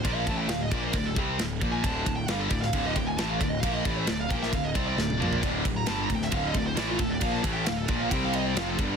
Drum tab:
RD |x-x-x-x-x-x-x-x-|x-x-x-x-x-x-x-x-|x-x-x-x-x-x-----|x-x-x-x-x-x-x-x-|
SD |----o-------o---|----o--o----o---|----o--o----o---|----o--o----o---|
T1 |----------------|----------------|-------------o--|----------------|
T2 |----------------|----------------|--------------o-|----------------|
FT |----------------|----------------|---------------o|----------------|
BD |o-o---o-o-o---o-|o-o---o-o-o---o-|o-o---o-o-o-----|o-o---o-o-o---o-|

RD |x-x-x-x-x-x-x-x-|
SD |----o-------o---|
T1 |----------------|
T2 |----------------|
FT |----------------|
BD |o-o---o-o-----o-|